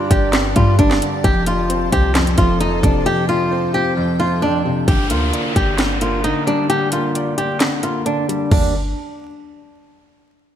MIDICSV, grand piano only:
0, 0, Header, 1, 2, 480
1, 0, Start_track
1, 0, Key_signature, -2, "minor"
1, 0, Tempo, 454545
1, 1312, Time_signature, 4, 2, 24, 8
1, 11148, End_track
2, 0, Start_track
2, 0, Title_t, "Grand piano"
2, 0, Program_c, 0, 0
2, 0, Control_c, 0, 64, 127
2, 0, Note_on_c, 0, 43, 95
2, 0, Note_on_c, 0, 50, 81
2, 0, Note_on_c, 0, 55, 87
2, 0, Note_on_c, 0, 62, 99
2, 111, Note_off_c, 0, 62, 0
2, 111, Note_on_c, 0, 62, 92
2, 336, Note_off_c, 0, 43, 0
2, 351, Note_on_c, 0, 43, 91
2, 352, Note_off_c, 0, 50, 0
2, 576, Note_off_c, 0, 55, 0
2, 592, Note_on_c, 0, 55, 90
2, 819, Note_off_c, 0, 43, 0
2, 835, Note_on_c, 0, 43, 84
2, 1071, Note_on_c, 0, 50, 87
2, 1311, Note_off_c, 0, 50, 0
2, 1311, Note_off_c, 0, 62, 0
2, 1312, Note_off_c, 0, 55, 0
2, 1313, Note_off_c, 0, 43, 0
2, 1314, Note_on_c, 0, 41, 100
2, 1323, Control_c, 0, 64, 0
2, 1489, Control_c, 0, 64, 127
2, 1551, Note_on_c, 0, 53, 84
2, 1790, Note_on_c, 0, 60, 93
2, 2015, Note_off_c, 0, 60, 0
2, 2030, Note_on_c, 0, 60, 90
2, 2259, Note_off_c, 0, 41, 0
2, 2275, Note_on_c, 0, 41, 90
2, 2494, Note_off_c, 0, 53, 0
2, 2510, Note_on_c, 0, 53, 88
2, 2736, Note_off_c, 0, 41, 0
2, 2752, Note_on_c, 0, 41, 86
2, 2994, Note_on_c, 0, 48, 78
2, 3215, Note_off_c, 0, 41, 0
2, 3230, Note_on_c, 0, 41, 92
2, 3231, Note_off_c, 0, 60, 0
2, 3459, Note_off_c, 0, 53, 0
2, 3475, Note_on_c, 0, 53, 87
2, 3711, Note_on_c, 0, 60, 94
2, 3937, Note_off_c, 0, 60, 0
2, 3952, Note_on_c, 0, 60, 92
2, 4176, Note_off_c, 0, 41, 0
2, 4192, Note_on_c, 0, 41, 95
2, 4193, Note_off_c, 0, 48, 0
2, 4414, Note_off_c, 0, 53, 0
2, 4430, Note_on_c, 0, 53, 87
2, 4653, Note_off_c, 0, 41, 0
2, 4669, Note_on_c, 0, 41, 93
2, 4909, Note_on_c, 0, 48, 83
2, 5150, Note_off_c, 0, 41, 0
2, 5150, Note_off_c, 0, 48, 0
2, 5151, Note_off_c, 0, 53, 0
2, 5152, Note_off_c, 0, 60, 0
2, 5153, Note_on_c, 0, 50, 92
2, 5166, Control_c, 0, 64, 0
2, 5323, Control_c, 0, 64, 127
2, 5395, Note_on_c, 0, 58, 86
2, 5631, Note_on_c, 0, 74, 91
2, 5857, Note_off_c, 0, 74, 0
2, 5873, Note_on_c, 0, 74, 85
2, 6096, Note_off_c, 0, 50, 0
2, 6112, Note_on_c, 0, 50, 90
2, 6334, Note_off_c, 0, 58, 0
2, 6350, Note_on_c, 0, 58, 88
2, 6573, Note_off_c, 0, 50, 0
2, 6589, Note_on_c, 0, 50, 82
2, 6830, Note_on_c, 0, 55, 86
2, 7052, Note_off_c, 0, 50, 0
2, 7068, Note_on_c, 0, 50, 98
2, 7072, Note_off_c, 0, 74, 0
2, 7295, Note_off_c, 0, 58, 0
2, 7311, Note_on_c, 0, 58, 81
2, 7552, Note_on_c, 0, 74, 86
2, 7778, Note_off_c, 0, 74, 0
2, 7794, Note_on_c, 0, 74, 87
2, 8017, Note_off_c, 0, 50, 0
2, 8031, Note_off_c, 0, 55, 0
2, 8033, Note_on_c, 0, 50, 91
2, 8260, Note_off_c, 0, 58, 0
2, 8276, Note_on_c, 0, 58, 84
2, 8494, Note_off_c, 0, 50, 0
2, 8509, Note_on_c, 0, 50, 90
2, 8750, Note_on_c, 0, 55, 87
2, 8974, Note_off_c, 0, 55, 0
2, 8975, Note_off_c, 0, 50, 0
2, 8975, Note_off_c, 0, 58, 0
2, 8990, Note_on_c, 0, 50, 86
2, 8990, Note_on_c, 0, 55, 80
2, 8990, Note_on_c, 0, 58, 77
2, 8990, Note_on_c, 0, 62, 95
2, 8993, Note_off_c, 0, 74, 0
2, 9005, Control_c, 0, 64, 0
2, 9214, Note_off_c, 0, 50, 0
2, 9214, Note_off_c, 0, 55, 0
2, 9214, Note_off_c, 0, 58, 0
2, 9214, Note_off_c, 0, 62, 0
2, 11148, End_track
0, 0, End_of_file